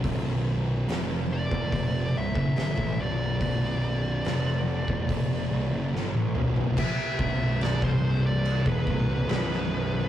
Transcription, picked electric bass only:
0.04 0.84 B0 medium
0.89 1.48 F1 loud
1.51 1.71 E1 loud
1.72 2.11 F1 medium
2.16 2.35 C1 medium
2.36 2.55 F#1 medium
2.56 2.76 G1 loud
2.78 2.98 A1 medium
2.98 3.38 B0 loud
3.40 4.21 B0 medium
4.25 4.84 F1 medium
4.88 5.07 E1 loud
5.09 5.48 F1 medium
5.52 5.71 C1 loud
5.73 5.92 F#1 medium
5.93 6.13 G1 medium
6.14 6.33 A1 medium
6.36 6.74 B0 medium
7.19 7.78 B0 loud
7.82 8.62 C1 loud
8.66 8.85 E1 medium
8.86 9.26 C1 medium
9.28 10.09 B0 loud

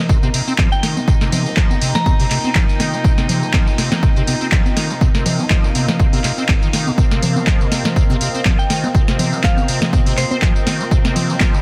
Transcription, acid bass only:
0.09 0.17 C3 medium
0.23 0.29 C3 loud
0.34 0.41 C3 medium
0.47 0.54 C4 medium
0.59 0.70 F3 loud
0.83 0.98 D#3 medium
0.97 1.00 C4 medium
1.08 1.15 C3 medium
1.21 1.30 C3 medium
1.32 1.47 C3 medium
1.46 1.52 G3 medium
1.57 1.72 F3 loud
1.70 1.76 C3 loud
1.81 1.93 C3 medium
2.06 2.14 C3 medium
2.20 2.26 C3 loud
2.31 2.38 C3 medium
2.44 2.50 C4 medium
2.55 2.66 F3 loud
2.80 2.95 D#3 medium
2.93 2.97 C4 medium
3.04 3.12 C3 medium
3.18 3.27 C3 medium
3.29 3.44 C3 medium
3.43 3.49 G3 medium
3.54 3.69 F3 loud
3.67 3.73 C3 loud
3.78 3.89 C3 medium
4.03 4.10 C3 medium
4.16 4.22 C3 loud
4.27 4.35 C3 medium
4.41 4.47 C4 medium
4.52 4.63 F3 loud
4.77 4.92 D#3 medium
4.90 4.94 C4 medium
5.01 5.09 C3 medium
5.15 5.24 C3 medium
5.26 5.41 C3 medium
5.39 5.45 G3 medium
5.50 5.65 F3 loud
5.64 5.70 C3 medium
5.75 5.86 C3 medium
6.00 6.07 C3 medium
6.13 6.19 C3 loud
6.24 6.32 C3 medium
6.38 6.44 C4 medium
6.49 6.53 C2 loud
6.62 6.68 D#3 medium
6.73 6.88 D#3 medium
6.87 6.90 C3 medium
6.98 7.05 C3 medium
7.11 7.21 C3 medium
7.23 7.37 C3 medium
7.36 7.42 G3 medium
7.47 7.62 F3 loud
7.61 7.67 C3 loud
7.72 7.83 C3 medium
7.96 8.04 C3 medium
8.10 8.16 C3 loud
8.21 8.28 C3 medium
8.34 8.40 C4 medium
8.45 8.57 F3 loud
8.70 8.85 D#3 medium
8.84 8.87 C4 medium
8.95 9.02 C3 medium
9.08 9.17 C3 medium
9.19 9.34 C3 medium
9.33 9.39 G3 medium
9.44 9.59 F3 loud
9.57 9.63 C3 loud
9.68 9.79 C3 medium
9.93 10.00 C3 medium
10.06 10.13 C3 loud
10.18 10.25 C3 medium
10.31 10.37 C4 medium
10.42 10.53 F3 loud
10.67 10.82 D#3 medium
10.80 10.84 C4 medium
10.91 10.99 C3 medium
11.05 11.14 C3 medium
11.16 11.31 C3 medium
11.29 11.35 G3 medium
11.40 11.55 F3 loud
11.54 11.60 C3 medium

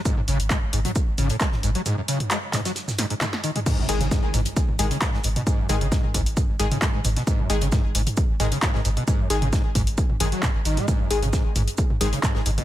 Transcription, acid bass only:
0.05 0.15 G#2 medium
0.17 0.21 F#2 medium
0.28 0.38 C#3 loud
0.51 0.57 G#3 medium
0.73 0.80 G#2 loud
0.85 0.91 F#3 medium
1.18 1.28 C#3 loud
1.30 1.36 A2 loud
1.41 1.47 G#3 medium
1.63 1.70 G#2 loud
1.75 1.81 F#3 medium
1.86 1.96 G#2 medium
1.98 2.01 F#2 medium
2.08 2.18 C#3 loud
2.31 2.37 G#3 medium
2.53 2.60 G#2 loud
2.65 2.71 F#3 medium
2.99 3.05 G#2 medium
3.10 3.14 G#2 medium
3.21 3.25 D#3 medium
3.44 3.50 D#3 loud
3.56 3.59 G#3 medium
3.66 3.80 G#2 loud
3.78 3.87 F#2 medium
4.01 4.07 C#3 medium
4.11 4.21 G#2 medium
4.34 4.40 G#2 medium
4.79 4.86 G#2 medium
4.91 4.97 C#3 medium
5.02 5.11 G#2 medium
5.14 5.19 G#2 medium
5.24 5.28 G#2 loud
5.36 5.42 B2 medium
5.47 5.60 G#2 loud
5.59 5.67 F#2 medium
5.81 5.87 C#3 medium
5.92 6.02 G#2 medium
6.14 6.21 G#2 medium
6.60 6.66 G#2 medium
6.71 6.77 C#3 medium
6.82 6.92 G#2 medium
6.94 7.00 G#2 medium
7.05 7.09 G#2 loud
7.17 7.22 B2 medium
7.27 7.41 G#2 loud
7.39 7.48 F#2 medium
7.62 7.67 C#3 medium
7.72 7.82 G#2 medium
7.95 8.01 G#2 medium
8.40 8.46 G#2 medium
8.52 8.58 C#3 medium
8.63 8.72 G#2 medium
8.74 8.80 G#2 medium
8.85 8.89 G#2 loud
8.97 9.03 B2 medium
9.08 9.21 G#2 loud
9.19 9.28 F#2 medium
9.42 9.48 C#3 medium
9.53 9.63 G#2 medium
9.75 9.82 G#2 medium
10.20 10.27 F#2 loud
10.32 10.44 F#3 medium
10.43 10.49 G#2 medium
10.65 10.79 D#3 loud
10.77 10.86 G#3 medium
10.88 11.01 G#2 loud
11.00 11.09 F#2 medium
11.22 11.28 C#3 medium
11.33 11.43 G#2 medium
11.56 11.62 G#2 medium
12.01 12.07 G#2 medium
12.13 12.19 C#3 medium
12.23 12.33 G#2 medium
12.35 12.41 G#2 medium
12.46 12.50 G#2 loud
12.58 12.64 B2 medium

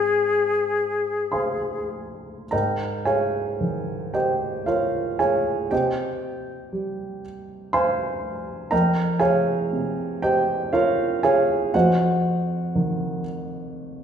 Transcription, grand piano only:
0.00 2.44 G#2 soft
0.00 2.45 G#3 soft
0.00 2.46 C4 soft
0.00 2.47 G4 soft
0.00 2.48 A#4 soft
1.32 2.48 C5 soft
1.32 2.48 F5 soft
1.32 2.48 G#5 soft
1.32 2.52 C6 soft
2.51 5.67 G#2 soft
2.51 3.03 A#4 soft
2.51 3.03 D#5 soft
2.51 3.03 G5 soft
2.51 3.06 A#5 medium
3.05 4.11 G#4 soft
3.05 4.11 C#5 soft
3.05 4.11 F5 soft
3.05 4.14 G#5 medium
3.61 5.71 D#3 soft
4.14 4.64 G4 soft
4.14 4.64 C5 soft
4.14 4.64 D#5 soft
4.14 4.67 G5 medium
4.66 5.16 F4 soft
4.66 5.16 A#4 soft
4.66 5.16 C#5 soft
4.66 5.19 F5 medium
5.19 5.68 G#4 soft
5.19 5.68 C#5 soft
5.19 5.68 F5 soft
5.19 5.71 G#5 medium
5.71 8.68 C3 soft
5.71 7.19 G4 soft
5.71 7.19 C5 soft
5.71 7.20 D#5 soft
5.71 7.23 G5 medium
6.72 8.72 G3 soft
7.73 8.68 C5 medium
7.73 8.68 F5 medium
7.73 8.68 G#5 medium
7.73 8.72 C6 medium
8.71 11.70 F2 soft
8.71 9.18 A#4 medium
8.71 9.17 D#5 soft
8.71 9.18 G5 soft
8.71 9.21 A#5 medium
9.20 10.18 G#4 medium
9.20 10.19 C#5 medium
9.20 10.19 F5 medium
9.20 10.22 G#5 medium
9.73 11.74 C3 soft
10.22 10.70 G4 soft
10.22 10.70 C5 medium
10.22 10.70 D#5 medium
10.22 10.73 G5 medium
10.73 11.20 F4 medium
10.73 11.20 A#4 medium
10.73 11.20 C#5 medium
10.73 11.22 F5 medium
11.23 11.71 G#4 medium
11.23 11.71 C#5 medium
11.23 11.70 F5 medium
11.23 11.73 G#5 medium
11.74 14.04 F2 soft
11.74 13.20 F#4 medium
11.74 13.21 C5 soft
11.74 13.21 D#5 soft
11.74 13.24 F#5 medium
12.75 14.04 D#3 soft

